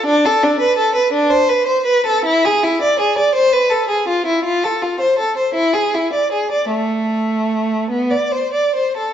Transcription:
0.06 D4
0.26 A4
0.43 D4
0.60 B4
0.77 A4
0.95 B4
1.13 D4
1.30 C5
1.49 B4
1.66 C5
1.86 B4
2.06 A4
2.25 E4
2.45 G#4
2.63 E4
2.82 D5
3.00 G#4
3.18 D5
3.35 C5
3.53 B4
3.70 A4
3.89 G#4
4.08 F4
4.26 E4
4.44 F4
4.64 A4
4.82 F4
5.00 C5
5.19 A4
5.37 C5
5.54 E4
5.74 G#4
5.95 E4
6.13 D5
6.32 G#4
6.51 D5
6.71 A3
7.90 B3
8.11 D5
8.32 C5
8.53 D5
8.75 C5
8.97 A4

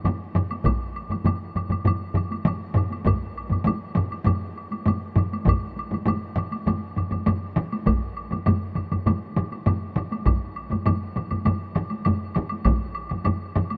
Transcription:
0.05 taiko low-mid, taiko mid, taiko high, high woodblock
0.35 taiko low-mid, taiko mid, high woodblock
0.51 taiko high, high woodblock
0.65 taiko, taiko low-mid, taiko mid, taiko high, high woodblock
0.96 high woodblock
1.09 taiko low-mid, taiko mid, taiko high, high woodblock
1.25 taiko low-mid, taiko mid, taiko high, high woodblock
1.55 taiko low-mid, taiko mid, high woodblock
1.70 taiko low-mid, taiko mid, taiko high, high woodblock
1.85 taiko low-mid, taiko mid, taiko high, high woodblock
2.14 taiko low-mid, taiko mid, high woodblock
2.31 taiko high, high woodblock
2.45 taiko low-mid, taiko mid, taiko high, high woodblock
2.74 taiko low-mid, taiko mid, high woodblock
2.90 taiko high, high woodblock
3.05 taiko, taiko low-mid, taiko mid, taiko high, high woodblock
3.38 high woodblock
3.50 taiko low-mid, taiko mid, taiko high, high woodblock
3.64 taiko low-mid, taiko mid, taiko high, high woodblock
3.95 taiko low-mid, taiko mid, high woodblock
4.11 taiko high, high woodblock
4.25 taiko low-mid, taiko mid, taiko high, high woodblock
4.57 high woodblock
4.71 taiko high, high woodblock
4.86 taiko low-mid, taiko mid, taiko high, high woodblock
5.16 taiko low-mid, taiko mid, high woodblock
5.33 taiko high, high woodblock
5.46 taiko, taiko low-mid, taiko mid, taiko high, high woodblock
5.77 taiko high, high woodblock
5.91 taiko low-mid, taiko mid, taiko high, high woodblock
6.06 taiko low-mid, taiko mid, taiko high, high woodblock
6.36 taiko low-mid, taiko mid, high woodblock
6.51 taiko high, high woodblock
6.66 taiko low-mid, taiko mid, taiko high, high woodblock
6.96 taiko low-mid, taiko mid, high woodblock
7.11 taiko low-mid, taiko mid, taiko high, high woodblock
7.26 taiko low-mid, taiko mid, taiko high, high woodblock
7.56 taiko low-mid, taiko mid, high woodblock
7.72 taiko high, high woodblock
7.86 taiko, taiko low-mid, taiko mid, taiko high, high woodblock
8.17 high woodblock
8.31 taiko low-mid, taiko mid, taiko high, high woodblock
8.46 taiko low-mid, taiko mid, taiko high, high woodblock
8.75 taiko low-mid, taiko mid, high woodblock
8.92 taiko low-mid, taiko mid, taiko high, high woodblock
9.06 taiko low-mid, taiko mid, taiko high, high woodblock
9.36 taiko low-mid, taiko mid, high woodblock
9.52 taiko high, high woodblock
9.66 taiko low-mid, taiko mid, taiko high, high woodblock
9.96 taiko low-mid, taiko mid, high woodblock
10.12 taiko high, high woodblock
10.26 taiko, taiko low-mid, taiko mid, taiko high, high woodblock
10.56 high woodblock
10.71 taiko low-mid, taiko mid, taiko high, high woodblock
10.86 taiko low-mid, taiko mid, taiko high, high woodblock
11.16 taiko low-mid, taiko mid, high woodblock
11.31 taiko low-mid, taiko mid, taiko high, high woodblock
11.45 taiko low-mid, taiko mid, taiko high, high woodblock
11.75 taiko low-mid, taiko mid, high woodblock
11.90 taiko high, high woodblock
12.05 taiko low-mid, taiko mid, taiko high, high woodblock
12.35 taiko low-mid, taiko mid, high woodblock
12.49 taiko high, high woodblock
12.65 taiko, taiko low-mid, taiko mid, taiko high, high woodblock
12.95 high woodblock
13.09 taiko low-mid, taiko mid, taiko high, high woodblock
13.25 taiko low-mid, taiko mid, taiko high, high woodblock
13.55 taiko low-mid, taiko mid, high woodblock
13.70 taiko high, high woodblock

